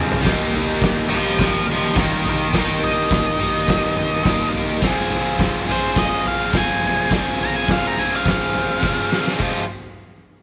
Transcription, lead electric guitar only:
1.09 C5 F5
1.39 C5 F5
1.72 C5 F5
1.98 A#4 D#5
2.29 A#4 D#5
2.58 A#4 D#5
2.84 D#5
5.72 C5
5.99 D#5
6.28 F5
6.57 G#5
7.43 A#5
7.56 G#5
7.72 F5
7.87 A#5
7.99 G#5
8.16 F5
8.31 F5

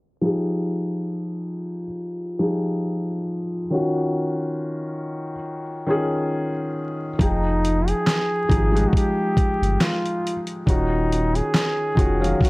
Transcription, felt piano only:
0.21 F3 D#4 G4 G#4
2.39 F3 D#4 G4 G#4
3.70 D#3 C#4 F4
3.74 F#4
5.86 D#3 C#4 F4 G#4
7.19 F3 D#4 G#4 G5
8.49 F3 D#4 G4 G#4
8.72 F3 G#3 D#4 G4
10.66 D#3 C#4 F4 F#4
11.95 D#3 C#4 F4 F#4
12.19 D#3 F#3 C#4 F5

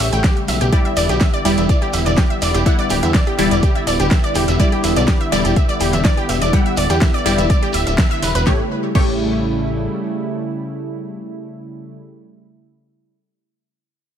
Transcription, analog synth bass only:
0.00 A1
0.12 A1
0.48 B1
0.61 B1
0.97 E1
1.09 B1
1.45 E1
1.58 E1
1.93 E1
2.06 E1
2.42 E1
2.54 E1
2.90 D1
3.03 E2
3.39 E1
3.51 E1
3.87 D1
4.00 D1
4.35 E1
4.48 E1
4.84 E1
4.96 B1
5.32 E1
5.45 E1
5.81 E1
5.93 E1
6.29 E1
6.42 E1
6.77 D1
6.90 E2
7.26 E1
7.38 E1
7.74 D1
7.87 D1
8.22 E1
8.35 E1
8.47 A1
8.95 A1

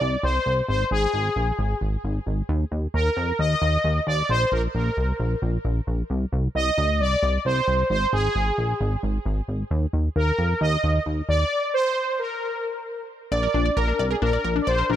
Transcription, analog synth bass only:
0.01 C2
0.23 C2
0.46 C2
0.69 G#1
0.91 G#1
1.14 G#1
1.36 A#1
1.59 G#1
1.81 G#1
2.04 G#1
2.26 G#1
2.49 D#2
2.72 D#2
2.94 D#2
3.17 F2
3.39 D#2
3.62 D#2
3.84 D#2
4.07 D#2
4.29 A#1
4.52 A#1
4.75 A#1
4.97 C2
5.20 A#1
5.42 A#1
5.65 A#1
5.87 A#1
6.10 C2
6.32 C2
6.55 C2
6.78 D2
7.00 C2
7.23 C2
7.45 C2
7.68 C2
7.90 G#1
8.13 G#1
8.35 G#1
8.58 A#1
8.81 G#1
9.03 G#1
9.26 G#1
9.48 G#1
9.71 D#2
9.93 D#2
10.16 D#2
10.38 F2
10.61 D#2
10.84 D#2
11.06 D#2
11.29 D#2
13.32 A#1
13.54 A#1
13.77 A#1
13.99 C2
14.22 A#1
14.44 A#1
14.67 A#1
14.90 A#1

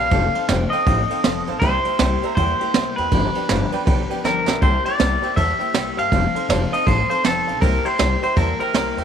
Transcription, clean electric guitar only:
Already playing: F5
0.70 D#5
1.59 C5
2.35 C5
2.96 B4
4.25 A#4
4.62 C5
4.86 D5
5.36 E5
5.99 F5
6.73 D#5
6.87 C5
7.10 C5
7.25 A4
7.61 A#4
7.85 C5
8.23 C5
8.37 A#4
8.60 A#4

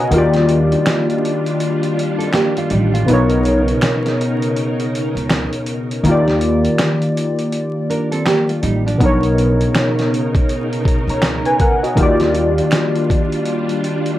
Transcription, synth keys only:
Already playing: A#4 B4 C#5 F#5 G#5 A#5
0.00 F#4 D#5
0.11 D#3 A#3 F4
0.16 G4 D5
3.05 B2 B3 D#4
3.11 A#4 C#5
6.03 D#3 A#3
6.08 F4 G4 D5
8.98 B2 B3 D#4
9.03 A#4 C#5
11.10 C#5 A#5
11.46 B4 G#5
11.61 A#4 F#5
11.83 F#4 D#5
11.95 D#3 A#3 F4
12.01 G4 D5

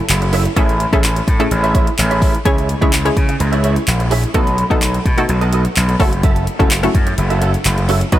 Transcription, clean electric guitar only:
0.22 muted clean electric guitar stroke
0.33 E4 A4 C#5 E5
0.45 muted clean electric guitar stroke
0.56 E4 G#4 C#5 E5
0.80 muted clean electric guitar stroke
0.93 E4 G#4 C#5 E5
1.04 muted clean electric guitar stroke
1.16 muted clean electric guitar stroke
1.40 muted clean electric guitar stroke
1.51 muted clean electric guitar stroke
1.63 E4 G#4 C#5 E5
1.74 E4 G#4 C#5 E5
1.87 muted clean electric guitar stroke
1.98 muted clean electric guitar stroke
2.11 E4 G#4 C#5 E5
2.22 E4 G#4 C#5 E5
2.34 muted clean electric guitar stroke
2.45 E4 G#4 C#5 E5
2.69 muted clean electric guitar stroke
2.81 E4 G#4 C#5 E5
2.92 muted clean electric guitar stroke
3.05 muted clean electric guitar stroke
3.29 muted clean electric guitar stroke
3.40 muted clean electric guitar stroke
3.52 E4 G#4 C#5 E5
3.63 E4 G#4 C#5 E5
3.76 muted clean electric guitar stroke
4.00 muted clean electric guitar stroke
4.11 E4 G#4 C#5 E5
4.23 muted clean electric guitar stroke
4.34 B3 F#4 A4 D#5
4.58 muted clean electric guitar stroke
4.70 B3 F#4 A4 D#5
4.82 muted clean electric guitar stroke
4.94 muted clean electric guitar stroke
5.18 muted clean electric guitar stroke
5.29 muted clean electric guitar stroke
5.41 B3 F#4 A4 D#5
5.52 B3 F#4 A4 D#5
5.65 muted clean electric guitar stroke
5.88 muted clean electric guitar stroke
6.00 C#4 F#4 A4 E5
6.12 muted clean electric guitar stroke
6.23 C#4 F#4 A4 E5
6.47 muted clean electric guitar stroke
6.59 C#4 F#4 A4 E5
6.71 muted clean electric guitar stroke
6.83 muted clean electric guitar stroke
7.07 muted clean electric guitar stroke
7.18 muted clean electric guitar stroke
7.30 C#4 F#4 A4 E5
7.41 C#4 F#4 A4 E5
7.54 muted clean electric guitar stroke
7.77 muted clean electric guitar stroke
7.88 C#4 F#4 A4 E5
8.01 muted clean electric guitar stroke
8.12 D#4 F#4 B4 D#5

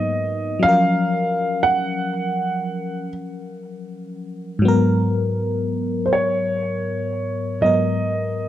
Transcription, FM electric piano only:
Already playing: G#2 F#3 A#3 B3 D#4
0.59 F#3 C#4
0.66 F3 A#4
4.59 G#2 F#3
4.65 B3 A#4
7.61 G#2 F#3 B3
7.66 A#4

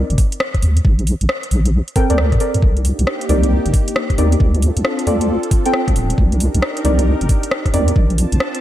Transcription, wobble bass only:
0.10 G1
0.62 D#2
0.85 A#1
1.21 A#1
1.51 A#1
2.10 D2
2.32 A#2
2.55 F2
2.62 C2
2.99 C2
3.29 C2
3.66 G1
4.18 D#2
4.40 D2
4.77 D2
5.07 D2
5.88 D2
5.96 D1
6.18 C2
6.55 C2
6.85 C2
7.21 G1
7.74 D#2
7.96 A#1
8.32 A#1

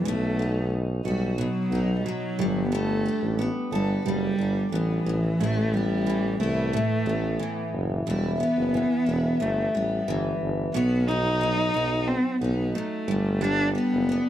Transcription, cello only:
0.06 A3
1.05 G3
1.39 F#3
1.99 G3
2.06 F#3
2.65 B3
2.73 A3
3.72 G3
4.06 G3
4.73 E3
5.40 A3
5.74 G3
6.40 A3
8.08 G3
8.41 B3
9.41 A3
9.76 G3
10.74 B3
11.07 D#4
12.08 C4
12.41 B3
12.74 A3
13.42 D4
13.74 B3

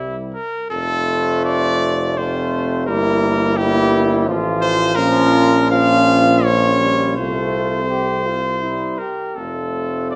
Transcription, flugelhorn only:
Already playing: E4
0.71 F4
2.17 F4
2.87 E4
3.57 E4
4.29 F4
5.00 F4
5.73 F4
6.44 F4
7.19 F4
7.89 G4
8.26 F4
8.61 E4
9.00 G4
9.39 F4

